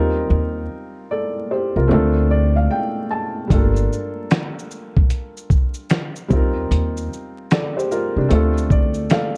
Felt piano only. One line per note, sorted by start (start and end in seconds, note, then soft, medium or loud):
0.00 1.85 G3 medium
0.00 1.86 C4 medium
0.00 1.87 D#4 medium
0.00 1.09 F4 medium
0.00 1.10 A#4 medium
1.11 1.49 A4 soft
1.11 1.49 D5 medium
1.51 1.75 G4 medium
1.51 1.75 C5 medium
1.76 1.91 F4 soft
1.76 2.14 A#4 medium
1.88 3.46 A3 medium
1.88 3.46 C4 medium
1.88 3.47 D4 medium
1.92 3.48 F4 medium
1.92 3.49 A4 medium
2.31 2.54 D5 medium
2.56 2.69 F5 medium
2.71 3.08 G5 medium
3.11 3.48 A5 medium
3.47 6.25 G3 medium
3.47 3.58 A3 soft
3.47 6.26 D4 medium
3.52 6.29 A#3 medium
3.52 6.27 F4 medium
3.52 6.28 A4 medium
6.28 8.25 G3 medium
6.28 8.26 C4 medium
6.28 7.09 D#4 medium
6.33 7.10 F4 medium
6.33 7.11 A#4 medium
7.51 7.75 A4 soft
7.51 7.75 D5 medium
7.77 7.91 G4 medium
7.77 7.90 C5 medium
7.91 8.15 F4 medium
7.91 8.15 A#4 medium
8.17 8.30 D4 medium
8.17 8.55 G4 medium
8.28 9.37 A3 medium
8.28 9.37 C4 medium
8.28 9.37 D4 medium
8.33 9.37 F4 medium
8.33 9.11 A4 medium
8.72 9.08 D5 medium
9.12 9.35 A4 medium
9.12 9.35 D5 medium
9.12 9.35 F5 medium